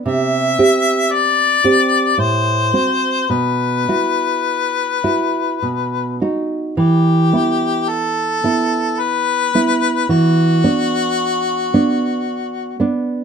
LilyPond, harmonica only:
\new Staff \with { instrumentName = "Harmonica" } { \time 3/4 \key b \phrygian \tempo 4 = 55 e''4 d''4 c''4 | b'2~ b'8 r8 | g'4 a'4 b'4 | fis'2~ fis'8 r8 | }